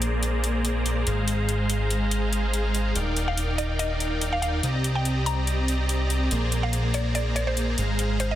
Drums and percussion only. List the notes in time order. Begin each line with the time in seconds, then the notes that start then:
0.02 closed hi-hat
0.23 closed hi-hat
0.44 closed hi-hat
0.65 closed hi-hat
0.86 closed hi-hat
1.07 closed hi-hat
1.28 closed hi-hat
1.49 closed hi-hat
1.70 closed hi-hat
1.91 closed hi-hat
2.11 closed hi-hat
2.33 closed hi-hat
2.54 closed hi-hat
2.75 closed hi-hat
2.96 closed hi-hat
3.17 closed hi-hat
3.37 closed hi-hat
3.58 closed hi-hat
3.79 closed hi-hat
4.00 closed hi-hat
4.21 closed hi-hat
4.42 closed hi-hat
4.63 closed hi-hat
4.84 closed hi-hat
5.05 closed hi-hat
5.26 closed hi-hat
5.47 closed hi-hat
5.68 closed hi-hat
5.89 closed hi-hat
6.10 closed hi-hat
6.31 closed hi-hat
6.52 closed hi-hat
6.73 closed hi-hat
6.94 closed hi-hat
7.15 closed hi-hat
7.36 closed hi-hat
7.57 closed hi-hat
7.78 closed hi-hat
7.99 closed hi-hat
8.20 closed hi-hat